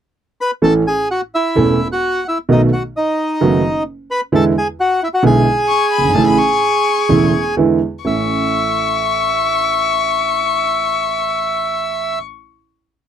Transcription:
0.41 bandoneon B4 B5
0.62 grand piano A1 A2 E3 A3 C#4 A4, bandoneon A4 A5
0.87 bandoneon G#4 G#5
1.11 bandoneon F#4 F#5
1.35 bandoneon E4 E5
1.55 grand piano E1 E2 E3 A3 C#4 A4
1.92 bandoneon F#4 F#5
2.28 bandoneon E4 E5
2.49 grand piano B1 B2 D#3 A3 B3 F#4, bandoneon D#4 D#5
2.73 bandoneon F#4 F#5
2.97 bandoneon D#4 D#5
3.41 grand piano F#1 F#2 D#3 A3 B3 F#4
4.11 bandoneon B4 B5
4.32 grand piano E2 D3 E3 G#3 B3 E4, bandoneon A4 A5
4.58 bandoneon G#4 G#5
4.80 bandoneon F#4 F#5
5.03 bandoneon E4 E5
5.14 bandoneon F#4 F#5
5.23 grand piano B1 B2 D3 G#3 B3 E4, bandoneon G#4 G#5
5.69 violin C#6
5.92 violin B5
5.98 grand piano F#1
6.04 grand piano G1
6.10 grand piano G#1
6.15 grand piano A1 A2 C#3 E3 A3 E4, violin A5
6.27 violin B5
6.38 violin C#6
7.09 grand piano E1 E2 C#3 E3 A3 E4
7.57 grand piano E2 D3 E3 G#3 B3 E4
8.05 grand piano A1 A3 C#4 E4, bandoneon E5, violin C#6

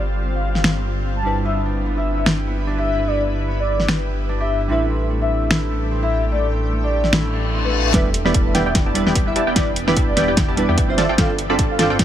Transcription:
Already playing: detuned saw bass G1, ambient pad G3 C4 F4, synth keys G3 C4 D4 F4 A4
0.35 soft synth lead F5
0.55 snare
0.64 finger snap, snare
1.16 soft synth lead A5
1.23 detuned saw bass G1, synth keys G3 D4 E4 B4, ambient pad E4 B4
1.45 harp B3, soft synth lead E5
1.66 harp D4
1.86 harp B3
1.97 harp E4, soft synth lead E5
2.17 harp B3
2.26 harp G4, finger snap, snare
2.47 harp B3
2.67 harp D4
2.78 harp G4, soft synth lead E5
2.99 harp E4
3.07 harp B3, soft synth lead D5
3.28 harp D4
3.48 harp B3
3.59 harp E4, soft synth lead D5
3.79 harp B3, snare
3.88 harp G4, finger snap, snare
4.09 harp B3
4.29 harp D4
4.40 harp G4, soft synth lead E5
4.61 harp E4
4.68 detuned saw bass A1, synth keys G3 C4 D4 E4, harp A3, ambient pad A3 G4, soft synth lead E5
4.72 synth keys B4
4.90 harp C4
5.10 harp A3
5.21 harp D4, soft synth lead E5
5.42 harp A3
5.51 harp E4, finger snap, snare
5.71 harp A3
5.91 harp C4
6.03 harp E4, soft synth lead E5
6.23 harp D4
6.32 harp A3, soft synth lead D5
6.52 harp C4
6.72 harp A3
6.84 harp D4, soft synth lead D5
7.04 harp A3, snare
7.13 harp E4, finger snap, snare, reverse cymbal
7.33 harp D4
7.53 harp C4
7.65 harp A3, soft synth lead B4
7.85 harp D4
7.93 detuned saw bass E1, ambient pad E3 B3 D4 G4, synth keys G3 B3 D4 E4 B4, supersaw synth B3 E4 G4 D5 G5, soft synth lead E5, kick, snare, closed hi-hat
8.14 closed hi-hat
8.25 detuned saw bass E1, synth keys G3 B3 D4 E4 B4, supersaw synth B3 E4 G4 D5 B5, snare
8.34 detuned saw bass E1, supersaw synth B3 E4 G4 A5, kick, closed hi-hat
8.46 soft synth lead E5
8.54 detuned saw bass E1, synth keys G3 B3 D4 E4 B4, supersaw synth B3 E4 G4 D5 G5, snare, closed hi-hat
8.66 detuned saw bass E1, supersaw synth B3 E4 G4 D5 G5
8.75 detuned saw bass E1, supersaw synth B3 E4 G4 D5 G5, kick, snare, closed hi-hat
8.86 detuned saw bass E1, supersaw synth B3 E4 G4 D5 A5
8.94 synth keys G3 B3 D4 E4 B4, closed hi-hat
9.07 detuned saw bass E1, supersaw synth B3 E4 G4 D5 G5, snare
9.15 detuned saw bass E1, supersaw synth B3 E4 G4 D5 G5, kick, closed hi-hat
9.26 synth keys G3 B3 D4 E4 E5, soft synth lead E5
9.36 detuned saw bass E1, supersaw synth B3 E4 G4 D5 A5, closed hi-hat
9.47 detuned saw bass E1, supersaw synth B3 E4 G4 D5 G5
9.55 detuned saw bass E1, synth keys G3 B3 D4 E4 B4, supersaw synth E4 G4 D5 G5, soft synth lead D5, kick, snare, closed hi-hat
9.76 closed hi-hat
9.87 detuned saw bass E1, synth keys G3 B3 D4 E4 B4, supersaw synth B3 E4 G4 D5 B5, snare
9.96 detuned saw bass E1, supersaw synth B3 E4 G4 A5, kick, closed hi-hat
10.08 soft synth lead D5
10.16 detuned saw bass E1, synth keys G3 B3 D4 E4 B4, supersaw synth B3 E4 G4 D5 G5, snare, closed hi-hat
10.28 detuned saw bass E1, supersaw synth B3 E4 G4 D5 G5
10.37 detuned saw bass E1, supersaw synth B3 E4 G4 D5 G5, kick, snare, closed hi-hat
10.48 detuned saw bass E1, supersaw synth B3 E4 G4 D5 A5
10.56 synth keys G3 B3 D4 E4 B4, closed hi-hat
10.69 detuned saw bass E2, supersaw synth B3 E4 G4 D5 G5
10.78 detuned saw bass E1, supersaw synth B3 E4 G4 D5 G5, kick, closed hi-hat
10.88 synth keys G3 C4 D4 F4 C5, soft synth lead E5
10.98 detuned saw bass G1, ambient pad G3 C4 F4, supersaw synth C4 F4 A4 D5 A5, snare, closed hi-hat
11.09 detuned saw bass G1, supersaw synth C4 F4 A4 D5 G5
11.17 detuned saw bass G1, synth keys G3 C4 D4 F4 A4, supersaw synth C4 F4 A4 D5 G5, soft synth lead F5, kick, snare, closed hi-hat
11.38 closed hi-hat
11.49 detuned saw bass G1, synth keys G3 C4 D4 F4 A4, supersaw synth C4 F4 A4 D5 B5
11.59 detuned saw bass G1, supersaw synth F4 A4 D5 A5, kick, closed hi-hat
11.70 soft synth lead F5
11.78 detuned saw bass G1, synth keys G3 C4 D4 F4 A4, supersaw synth C4 F4 A4 D5 G5, snare, closed hi-hat
11.90 detuned saw bass G1, supersaw synth C4 F4 A4 D5 G5
11.99 detuned saw bass G1, supersaw synth F4 A4, kick, snare, closed hi-hat

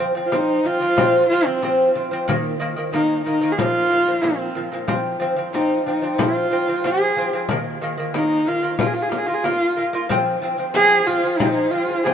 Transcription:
0.00 lute F3 C4
0.15 lute F3 C4
0.26 horsehead fiddle F4
0.32 lute F3 C4, horsehead fiddle D#4, frame drum
0.64 lute F3 C4, horsehead fiddle F4, frame drum
0.80 lute F3 C4
0.97 lute F3 C4, frame drum
1.29 lute F3 C4, horsehead fiddle F4
1.46 lute F3 C4, horsehead fiddle C4
1.62 lute F3 C4, frame drum
1.95 lute F3 C4, frame drum
2.11 lute F3 C4
2.28 lute D#3 A#3, frame drum
2.60 lute D#3 A#3, frame drum
2.76 lute D#3 A#3
2.93 lute D#3 A#3, horsehead fiddle D#4, frame drum
3.25 lute D#3 A#3, horsehead fiddle D#4, frame drum
3.41 lute D#3 A#3
3.52 horsehead fiddle G#4
3.58 lute A#2 F3, horsehead fiddle F4, frame drum
3.90 lute A#2 F3
4.07 lute A#2 F3
4.22 lute A#2 F3, horsehead fiddle C4, frame drum
4.55 lute A#2 F3, frame drum
4.72 lute A#2 F3
4.88 lute F3 C4, frame drum
5.20 lute F3 C4, frame drum
5.36 lute F3 C4
5.53 lute F3 C4, horsehead fiddle D#4, frame drum
5.86 lute F3 C4, horsehead fiddle D#4, frame drum
6.02 lute F3 C4
6.18 lute F3 C4, horsehead fiddle F4, frame drum
6.51 lute F3 C4
6.68 lute F3 C4
6.84 lute F3 C4, horsehead fiddle G#4, frame drum
7.17 lute F3 C4, frame drum
7.33 lute F3 C4
7.49 lute D#3 A#3, frame drum
7.82 lute D#3 A#3, frame drum
7.98 lute D#3 A#3
8.14 lute D#3 A#3, horsehead fiddle D#4, frame drum
8.46 lute D#3 A#3, horsehead fiddle F4, frame drum
8.63 lute D#3 A#3
8.79 lute A#3 F4, horsehead fiddle F4, frame drum
8.87 horsehead fiddle G#4
8.94 horsehead fiddle F4
9.02 horsehead fiddle G#4
9.10 lute A#3 F4, horsehead fiddle F4, frame drum
9.18 horsehead fiddle G#4
9.27 lute A#3 F4, horsehead fiddle F4
9.34 horsehead fiddle G#4
9.44 lute A#3 F4, horsehead fiddle F4, frame drum
9.77 lute A#3 F4, frame drum
9.93 lute A#3 F4
10.09 lute F3 C4, frame drum
10.42 lute F3 C4, frame drum
10.58 lute F3 C4
10.74 lute F3 C4, horsehead fiddle G#4, frame drum
11.07 lute F3 C4, horsehead fiddle F4, frame drum
11.24 lute F3 C4
11.38 lute F3 C4, horsehead fiddle D#4, frame drum
11.71 lute F3 C4, horsehead fiddle F4
11.89 lute F3 C4
12.04 lute F3 C4, horsehead fiddle G#4, frame drum

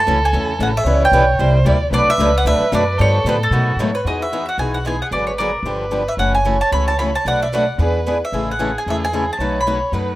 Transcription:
Already playing: violin A4
0.00 mandolin A5
0.06 upright bass C#2, steel-string acoustic guitar C#3 E3 F#3 A3 C#4 E4 F#4 A4
0.25 mandolin G#5
0.33 upright bass E2, steel-string acoustic guitar C#3 E3 F#3 A3 C#4 E4 F#4 A4
0.59 upright bass A1, steel-string acoustic guitar C#3 E3 F#3 A3 C#4 E4 F#4 A4, mandolin F#5
0.77 mandolin E5
0.84 upright bass C#2, steel-string acoustic guitar C#3 E3 G3 B3 C#4 E4 G4 B4, violin C#5
1.05 mandolin G5
1.12 upright bass B1, steel-string acoustic guitar C#3 E3 G3 B3 C#4 E4 G4 B4
1.39 upright bass C2, steel-string acoustic guitar C3 G3 A#3 E4 G4, violin C5
1.65 upright bass D2, steel-string acoustic guitar C3 G3 A#3 E4 G4, violin D5
1.91 upright bass B1, steel-string acoustic guitar B2 F#3 A3 D4 F#4 B4, violin B4, mandolin D5
2.07 mandolin E5, muted upright bass stroke
2.18 upright bass C#2, steel-string acoustic guitar B2 F#3 A3 D4 F#4 B4
2.38 mandolin F#5
2.45 upright bass D2, steel-string acoustic guitar B2 F#3 A3 D4 F#4 B4, mandolin E5
2.60 muted upright bass stroke
2.72 upright bass F#2, steel-string acoustic guitar B2 F#3 A3 D4 F#4 B4, mandolin D5
2.98 upright bass G2, steel-string acoustic guitar D3 F3 B3 D4 G4, violin A4, mandolin C#5
3.24 upright bass A2, steel-string acoustic guitar D3 F3 B3 D4 G4
3.29 mandolin B4
3.43 mandolin A4
3.51 upright bass B2, steel-string acoustic guitar B2 D#3 F#3 A3 B3 D#4 F#4 A4, violin F#4
3.76 upright bass G#2, steel-string acoustic guitar B2 D#3 F#3 B3 A4, violin C#5
3.80 steel-string acoustic guitar A3 D#4 F#4
3.95 mandolin B4
4.05 upright bass E2, steel-string acoustic guitar E3 G#3 B3 D#4 G#4, violin F#4, mandolin D#5
4.22 mandolin E5
4.33 steel-string acoustic guitar E3 G#3 B3 D#4 G#4
4.46 mandolin E5 F#5
4.58 upright bass B1, steel-string acoustic guitar E3 G#3 B3 D#4 G#4, mandolin G#5
4.74 mandolin F#5
4.85 steel-string acoustic guitar E3 G#3 B3 D#4 G#4, violin G#4, mandolin G#5
5.02 mandolin F#5
5.11 upright bass G#1, steel-string acoustic guitar D3 F#3 B3 F#4 G#4, violin B4, mandolin D5
5.27 mandolin C#5
5.38 steel-string acoustic guitar D3 F#3 B3 F#4 G#4, violin A#4, mandolin D5
5.63 upright bass G1, steel-string acoustic guitar D3 F3 B3 D4, violin B4
5.67 steel-string acoustic guitar G4
5.91 steel-string acoustic guitar D3 F3 B3 D4 G4
6.08 mandolin E5
6.17 upright bass F#1, steel-string acoustic guitar C#3 E3 F#3 A3 C#4 E4 F#4 A4, violin C#5, mandolin F#5
6.35 mandolin G#5
6.45 steel-string acoustic guitar C#3 E3 F#3 A3 C#4 E4 F#4 A4
6.61 mandolin A5
6.72 upright bass C#2, steel-string acoustic guitar C#3 E3 F#3 A3 C#4 E4 F#4 A4, mandolin B5
6.88 mandolin A5
6.99 steel-string acoustic guitar C#3 E3 F#3 A3 C#4 E4 F#4 A4, mandolin B5
7.15 mandolin A5
7.25 upright bass B1, steel-string acoustic guitar B2 F#3 A3 D4 F#4 B4, violin D5, mandolin F#5
7.42 mandolin E5
7.52 steel-string acoustic guitar B2 F#3 A3 D4 F#4 B4, mandolin F#5
7.78 upright bass E2, steel-string acoustic guitar E3 B3 D4 G#4 B4, violin B4
8.06 steel-string acoustic guitar E3 B3 D4 G#4 B4
8.25 mandolin E5
8.32 upright bass A1, steel-string acoustic guitar C#3 E3 G#3 A3 C#4 E4 G#4 A4, violin G#4
8.51 mandolin F#5
8.59 steel-string acoustic guitar C#3 E3 G#3 A3 C#4 E4 G#4 A4
8.78 mandolin G#5
8.86 upright bass E2, steel-string acoustic guitar C#3 E3 G#3 A3 C#4 E4 G#4 A4, mandolin E5
9.05 mandolin G#5
9.13 steel-string acoustic guitar C#3 E3 G#3 A3 C#4 E4 G#4 A4
9.33 mandolin A5
9.38 upright bass B1, steel-string acoustic guitar B2 F#3 A3 D#4 F#4 B4, violin C#5
9.61 mandolin B5
9.67 steel-string acoustic guitar B2 F#3 A3 D#4 F#4 B4
9.92 upright bass F#2, steel-string acoustic guitar B2 F#3 A3 D#4 F#4 B4, violin B4

